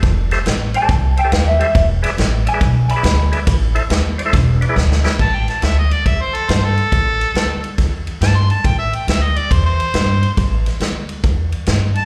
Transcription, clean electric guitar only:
Already playing: A5
0.76 A5
1.19 G5
1.32 F5
1.48 E5
1.62 E5
2.49 G#5
2.91 B5

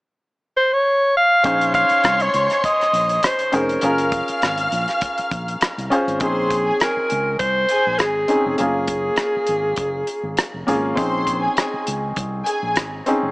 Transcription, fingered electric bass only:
1.45 A#1
1.91 muted fingered electric bass stroke
2.04 C2
2.34 C#2
2.93 A#1
3.53 F1
3.83 F#1
4.29 muted fingered electric bass stroke
4.43 G#1
4.72 A#1
5.19 muted fingered electric bass stroke
5.32 A#1
5.62 muted fingered electric bass stroke
5.78 C2
6.08 G#1
6.21 A#1
6.97 muted fingered electric bass stroke
7.12 C#2
7.40 C2
7.87 A#1
8.01 G#1
8.46 F1
8.60 F#1
9.36 muted fingered electric bass stroke
9.49 G#1
9.78 F#1
10.23 G#1
10.54 F1
10.68 G#1
10.98 A#1
11.74 muted fingered electric bass stroke
11.88 C#2
12.17 C2
12.63 A#1
12.77 G#1
13.23 F1

